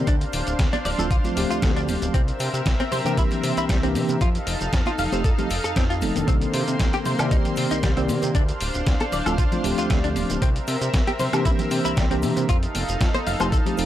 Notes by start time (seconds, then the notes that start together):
0.07 D2 D4 C5 F5, kick, closed hi-hat, cabasa, shaker
0.21 closed hi-hat, shaker
0.33 D1, open hi-hat, cabasa
0.47 D1, closed hi-hat, cabasa, shaker
0.59 D2, kick, snare, closed hi-hat, cabasa, shaker
0.73 D4, closed hi-hat, high conga, shaker
0.85 D1 D5, open hi-hat, low conga, cabasa
0.98 D1 F3 A3 C4 D4 F4 A4, closed hi-hat, cabasa, shaker
1.11 D2 F4, kick, closed hi-hat, cabasa, shaker
1.24 F3 A3 C4 D4 F4, closed hi-hat, low conga, shaker
1.36 D1 F3 A3 C4 D4 G4, open hi-hat, cabasa
1.50 D2 F4, closed hi-hat, cabasa, shaker
1.62 D2 A3, kick, snare, closed hi-hat, cabasa, shaker
1.76 D4, closed hi-hat, shaker
1.88 D1, open hi-hat, high conga, cabasa
2.02 D1, closed hi-hat, high conga, cabasa, shaker
2.14 C2 C4 A#4 E5, kick, closed hi-hat, cabasa, shaker
2.28 closed hi-hat, shaker
2.40 C3, open hi-hat, cabasa
2.54 C3, closed hi-hat, cabasa, shaker
2.66 C2, kick, snare, closed hi-hat, cabasa, shaker
2.80 C4, closed hi-hat, high conga, shaker
2.92 C3 C5, open hi-hat, low conga, cabasa
3.04 C3 E3 A#3 C4 D4 G4, closed hi-hat, cabasa, shaker
3.17 C2 E4, kick, closed hi-hat, cabasa, shaker
3.31 closed hi-hat, low conga, shaker
3.43 C3, open hi-hat, cabasa
3.57 C2 E4, closed hi-hat, cabasa, shaker
3.69 C2 G3, kick, snare, closed hi-hat, cabasa, shaker
3.82 E3 A#3 C4 D4 G4, closed hi-hat, shaker
3.95 C3, open hi-hat, high conga, cabasa
4.08 C3, closed hi-hat, high conga, cabasa, shaker
4.21 F2 D#4 F4 A4 F5, kick, closed hi-hat, cabasa, shaker
4.35 closed hi-hat, shaker
4.47 F1, open hi-hat, cabasa
4.61 F1, closed hi-hat, cabasa, shaker
4.73 F2, kick, snare, closed hi-hat, cabasa, shaker
4.86 F4, closed hi-hat, high conga, shaker
4.98 F1 F5, open hi-hat, low conga, cabasa
5.12 F1 F3 A3 C4 D#4 G4 C5, closed hi-hat, cabasa, shaker
5.24 F2 A4, kick, closed hi-hat, cabasa, shaker
5.38 F3 A3 C4 D#4 G4, closed hi-hat, low conga, shaker
5.50 F1, open hi-hat, cabasa
5.64 F2 A4, closed hi-hat, cabasa, shaker
5.76 F2 C4, kick, snare, closed hi-hat, cabasa, shaker
5.90 F4, closed hi-hat, shaker
6.02 F1 F3 A3 C4 D#4 A4, open hi-hat, high conga, cabasa
6.15 F1 D#3 A#3 C4 D4 A4, closed hi-hat, high conga, cabasa, shaker
6.28 C2 A#3 C4 C6, kick, closed hi-hat, cabasa, shaker
6.42 closed hi-hat, shaker
6.54 C3, open hi-hat, cabasa
6.68 C3, closed hi-hat, cabasa, shaker
6.80 C2, kick, snare, closed hi-hat, cabasa, shaker
6.93 G4, closed hi-hat, high conga, shaker
7.05 C3 C5, open hi-hat, low conga, cabasa
7.18 C3 D#3 A#3 C4 G4 D5, closed hi-hat, high bongo, cabasa, high woodblock, shaker
7.31 C2 D#4, kick, closed hi-hat, cabasa, shaker
7.45 closed hi-hat, low conga, shaker
7.56 C3, open hi-hat, cabasa
7.71 C2 D#4, closed hi-hat, cabasa, shaker
7.83 C2 G3, kick, snare, closed hi-hat, cabasa, shaker
7.96 D#3 A#3 C4 G4 D5, closed hi-hat, shaker
8.08 C3, open hi-hat, high conga, cabasa
8.22 C3, closed hi-hat, high bongo, high conga, cabasa, shaker
8.35 D2 D4 C5 F5, kick, closed hi-hat, cabasa, shaker
8.49 closed hi-hat, shaker
8.61 D1, open hi-hat, cabasa
8.74 D1, closed hi-hat, cabasa, shaker
8.87 D2, kick, snare, closed hi-hat, cabasa, shaker
9.00 A4, closed hi-hat, high conga, shaker
9.12 D1 D5, open hi-hat, low conga, cabasa
9.26 D1 F3 A3 C4 D4 F4 A4, closed hi-hat, high bongo, cabasa, high woodblock, shaker
9.38 D2 F4, kick, closed hi-hat, cabasa, shaker
9.52 F3 A3 C4 D4 F4, closed hi-hat, low conga, shaker
9.63 D1 F3 A3 C4 D4 G4, open hi-hat, cabasa
9.78 D2 F4, closed hi-hat, cabasa, shaker
9.90 D2 A3, kick, snare, closed hi-hat, cabasa, shaker
10.04 D4, closed hi-hat, shaker
10.16 D1, open hi-hat, high conga, cabasa
10.30 D1, closed hi-hat, high bongo, high conga, cabasa, shaker
10.42 C2 C4 A#4 E5, kick, closed hi-hat, cabasa, shaker
10.56 closed hi-hat, shaker
10.67 C3, open hi-hat, cabasa
10.81 C3, closed hi-hat, cabasa, shaker
10.94 C2, kick, snare, closed hi-hat, cabasa, shaker
11.07 G4, closed hi-hat, high conga, shaker
11.19 C3 C5, open hi-hat, low conga, cabasa
11.32 C3 E3 A#3 C4 D4 G4, closed hi-hat, high bongo, cabasa, high woodblock, shaker
11.45 C2 E4, kick, closed hi-hat, cabasa, shaker
11.59 closed hi-hat, low conga, shaker
11.71 C3, open hi-hat, cabasa
11.85 C2 E4, closed hi-hat, cabasa, shaker
11.97 C2 G3, kick, snare, closed hi-hat, cabasa, shaker
12.10 E3 A#3 C4 D4 G4, closed hi-hat, shaker
12.22 C3, open hi-hat, high conga, cabasa
12.36 C3, closed hi-hat, high bongo, high conga, cabasa, shaker
12.49 F2 D#4 F4 A4 F5, kick, closed hi-hat, cabasa, shaker
12.63 closed hi-hat, shaker
12.75 F1, open hi-hat, high conga, cabasa
12.89 F1, closed hi-hat, cabasa, shaker
13.01 F2, kick, snare, closed hi-hat, cabasa, shaker
13.14 C5, closed hi-hat, high conga, shaker
13.27 F1 F5, open hi-hat, low conga, cabasa
13.39 F1 F3 A3 C4 D#4 G4 C5, closed hi-hat, high bongo, cabasa, high woodblock, shaker
13.52 F2 A4, kick, closed hi-hat, cabasa, shaker
13.65 F3 A3 C4 D#4 G4, closed hi-hat, low conga, shaker
13.77 F1 F3 A3 C4 D#4 A4, open hi-hat, cabasa